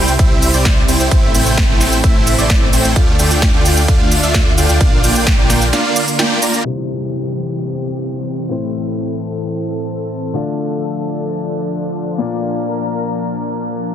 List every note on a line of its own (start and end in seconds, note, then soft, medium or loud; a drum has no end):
0.00 0.17 C2 loud
0.00 2.92 C3 medium
0.00 0.13 G3 loud
0.00 1.10 G3 medium
0.00 0.13 C4 medium
0.00 0.13 E4 medium
0.00 2.92 E4 medium
0.00 0.13 C5 medium
0.00 0.13 G5 loud
0.08 shaker soft
0.19 0.51 C2 loud
0.19 0.51 G3 medium
0.19 0.51 C4 medium
0.19 0.51 E4 medium
0.19 0.51 C5 medium
0.19 0.51 E5 loud
0.19 kick loud
0.19 ride medium
0.19 shaker soft
0.42 open hi-hat loud
0.42 shaker medium
0.54 0.86 C2 loud
0.54 0.83 G3 medium
0.54 0.83 C4 medium
0.54 0.83 E4 medium
0.54 0.83 C5 medium
0.54 0.83 D5 loud
0.54 shaker soft
0.65 kick loud
0.65 snare loud
0.65 ride medium
0.65 shaker soft
0.88 0.98 C2 loud
0.88 0.98 G3 medium
0.88 0.98 C4 medium
0.88 0.98 E4 medium
0.88 0.98 C5 medium
0.88 0.98 G5 loud
0.88 open hi-hat loud
0.88 shaker medium
1.00 1.09 C2 loud
1.00 1.09 G3 medium
1.00 1.09 C4 medium
1.00 1.09 E4 medium
1.00 1.09 C5 medium
1.00 1.09 G5 loud
1.00 shaker soft
1.11 1.32 A1 loud
1.11 1.32 A3 medium
1.11 4.77 A3 medium
1.11 1.32 C4 medium
1.11 1.32 E4 medium
1.11 1.32 C5 medium
1.11 1.32 E5 loud
1.11 kick loud
1.11 ride medium
1.11 shaker soft
1.34 1.67 A1 loud
1.34 1.66 A3 medium
1.34 1.66 C4 medium
1.34 1.66 E4 medium
1.34 1.66 C5 medium
1.34 1.66 G5 loud
1.34 open hi-hat loud
1.34 shaker medium
1.46 shaker soft
1.57 kick loud
1.57 snare loud
1.57 ride medium
1.57 shaker soft
1.69 2.01 A1 loud
1.69 1.98 A3 loud
1.69 1.98 C4 medium
1.69 1.98 E4 medium
1.69 1.98 C5 medium
1.69 1.98 G5 loud
1.81 snare medium
1.81 open hi-hat loud
1.81 shaker medium
1.92 shaker soft
2.04 2.36 A1 medium
2.04 2.36 A3 medium
2.04 2.36 C4 medium
2.04 2.36 E4 medium
2.04 2.36 C5 medium
2.04 2.36 E5 loud
2.04 kick loud
2.04 ride medium
2.04 shaker soft
2.27 open hi-hat loud
2.27 shaker medium
2.38 2.71 A1 loud
2.38 2.67 A3 medium
2.38 2.67 C4 medium
2.38 2.67 E4 medium
2.38 2.67 C5 medium
2.38 2.67 D5 loud
2.38 shaker soft
2.50 kick loud
2.50 snare loud
2.50 ride medium
2.50 shaker soft
2.73 2.82 A1 loud
2.73 2.83 A3 medium
2.73 2.83 C4 medium
2.73 2.83 E4 medium
2.73 2.83 C5 medium
2.73 2.83 G5 loud
2.73 open hi-hat loud
2.73 shaker medium
2.84 2.94 A1 loud
2.84 2.93 A3 medium
2.84 2.93 C4 medium
2.84 2.93 E4 medium
2.84 2.93 C5 medium
2.84 2.93 G5 loud
2.84 shaker soft
2.96 3.17 D2 loud
2.96 6.62 D3 medium
2.96 3.16 A3 medium
2.96 3.16 D4 medium
2.96 3.16 F4 medium
2.96 6.62 F4 medium
2.96 3.16 D5 medium
2.96 3.16 F5 loud
2.96 kick loud
2.96 ride medium
2.96 shaker soft
3.19 3.51 D2 loud
3.19 3.51 A3 medium
3.19 3.51 D4 medium
3.19 3.51 F4 medium
3.19 3.51 D5 medium
3.19 3.51 G5 loud
3.19 open hi-hat loud
3.19 shaker medium
3.31 shaker soft
3.42 kick loud
3.42 snare loud
3.42 ride medium
3.42 shaker soft
3.54 3.86 D2 loud
3.54 3.83 A3 loud
3.54 3.82 D4 medium
3.54 3.82 F4 medium
3.54 3.82 D5 medium
3.54 3.83 G5 loud
3.65 open hi-hat loud
3.65 shaker medium
3.77 shaker soft
3.88 4.21 D2 loud
3.88 4.20 A3 medium
3.88 4.20 D4 medium
3.88 4.20 F4 medium
3.88 4.20 D5 medium
3.88 4.20 F5 loud
3.88 kick loud
3.88 ride medium
3.88 shaker soft
4.11 open hi-hat loud
4.11 shaker medium
4.23 4.55 D2 loud
4.23 4.52 A3 loud
4.23 4.52 D4 medium
4.23 4.52 F4 medium
4.23 4.52 D5 medium
4.23 4.52 E5 loud
4.23 shaker soft
4.34 kick loud
4.34 snare loud
4.34 ride medium
4.34 shaker soft
4.58 4.67 D2 loud
4.58 4.67 A3 medium
4.58 4.67 D4 medium
4.58 4.67 F4 medium
4.58 4.67 D5 medium
4.58 4.67 G5 loud
4.58 open hi-hat loud
4.58 shaker medium
4.69 4.78 D2 loud
4.69 4.78 A3 medium
4.69 4.78 D4 medium
4.69 4.78 F4 medium
4.69 4.78 D5 medium
4.69 4.78 G5 loud
4.69 shaker soft
4.81 5.01 A#1 loud
4.81 6.64 A#3 medium
4.81 5.01 A#3 medium
4.81 5.01 D4 medium
4.81 5.01 D5 medium
4.81 5.01 F5 loud
4.81 kick loud
4.81 ride medium
4.81 shaker soft
5.04 5.36 A#1 loud
5.04 5.36 A#3 medium
5.04 5.36 D4 medium
5.04 5.36 F4 medium
5.04 5.36 D5 medium
5.04 5.36 G5 loud
5.04 open hi-hat loud
5.04 shaker medium
5.16 shaker soft
5.27 kick loud
5.27 snare loud
5.27 ride medium
5.27 shaker soft
5.38 5.71 A#1 loud
5.38 5.67 A#3 loud
5.38 5.67 D4 medium
5.38 5.67 F4 medium
5.38 5.67 D5 medium
5.38 5.67 G5 loud
5.50 snare medium
5.50 open hi-hat loud
5.50 shaker medium
5.62 shaker soft
5.73 6.05 A#3 medium
5.73 6.05 D4 medium
5.73 6.05 F4 medium
5.73 6.05 D5 medium
5.73 6.05 F5 loud
5.73 snare medium
5.73 ride medium
5.73 shaker soft
5.96 open hi-hat loud
5.96 shaker medium
6.08 shaker soft
6.19 6.39 A#3 loud
6.19 6.39 D4 loud
6.19 6.39 F4 loud
6.19 6.39 D5 loud
6.19 6.39 G5 loud
6.19 snare loud
6.19 ride medium
6.19 shaker soft
6.42 6.63 A#3 medium
6.42 6.63 D4 medium
6.42 6.63 F4 medium
6.42 6.63 D5 medium
6.42 6.63 A#5 loud
6.42 open hi-hat loud
6.42 shaker medium
6.54 shaker soft
6.64 8.47 C3 medium
6.64 10.31 E3 medium
6.64 8.47 G3 medium
6.64 10.31 C4 medium
6.64 8.47 C4 medium
6.64 8.47 E4 medium
6.64 8.48 G4 medium
6.64 8.48 C5 medium
6.64 downlifter medium
8.49 10.31 A2 medium
8.49 10.31 A3 medium
8.49 10.32 C4 medium
8.49 10.32 E4 medium
8.49 12.15 A4 medium
8.49 10.32 C5 medium
10.33 12.16 D3 medium
10.33 13.95 F3 medium
10.33 12.16 A3 medium
10.33 12.16 D4 medium
10.33 13.95 D4 medium
10.33 12.17 F4 medium
10.33 12.17 D5 medium
12.18 13.95 A#2 medium
12.18 13.95 A#3 medium
12.18 13.95 D4 medium
12.18 13.95 F4 medium
12.18 13.95 A#4 medium
12.18 13.95 D5 medium